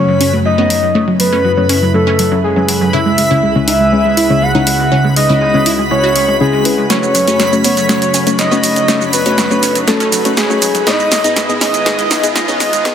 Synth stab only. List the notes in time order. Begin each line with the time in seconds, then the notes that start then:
Already playing: A3 C#4 F#4 C#5
0.33 A3 C#4 F#4 C#5
0.58 A3 C#4 F#4 C#5
0.95 A3 C#4 F#4 C#5
1.32 A3 C#4 F#4 C#5
1.57 A3 C#4 F#4 C#5
1.94 A3 C#4 F#4 C#5
2.32 A3 C#4 F#4 C#5
2.56 A3 C#4 F#4 C#5
2.93 C#3 G#3 C#4 E4 C#5
3.31 C#3 G#3 C#4 E4 C#5
3.56 C#3 G#3 C#4 E4 C#5
3.92 C#3 G#3 C#4 E4 C#5
4.30 C#3 G#3 C#4 E4 C#5
4.55 C#3 G#3 C#4 E4 C#5
4.92 C#3 G#3 C#4 E4 C#5
5.29 C#3 G#3 C#4 E4 C#5
5.54 C#3 G#3 C#4 E4 C#5
5.91 C#3 G#3 C#4 E4 C#5
6.40 C#3 G#3 C#4 E4 C#5
6.65 G#3 C#4 E4 B4
6.90 A3 C#4 F#4 C#5
7.28 A3 C#4 F#4 C#5
7.52 A3 C#4 F#4 C#5
7.89 A3 C#4 F#4 C#5
8.27 A3 C#4 F#4 C#5
8.52 A3 C#4 F#4 C#5
8.88 A3 C#4 F#4 C#5
9.26 A3 C#4 F#4 C#5
9.51 A3 C#4 F#4 C#5
9.88 A3 C#4 F#4 C#5
10.25 A3 C#4 F#4 C#5
10.50 A3 C#4 F#4 C#5
10.87 G#2 B3 D#4 G#4 D#5
11.24 G#2 B3 D#4 G#4 D#5
11.49 G#2 B3 D#4 G#4 D#5
11.86 G#2 B3 D#4 G#4 D#5
12.23 G#2 B3 D#4 G#4 D#5
12.48 G#2 B3 D#4 G#4 D#5
12.85 G#2 B3 D#4 G#4 D#5